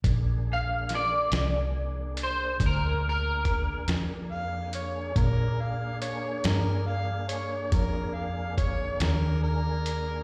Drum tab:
HH |x-xx-xx-xx-x|x-xx-xx-xx-x|
SD |--oo-----o--|---o-----o--|
BD |o-----o-o---|o-----o-o---|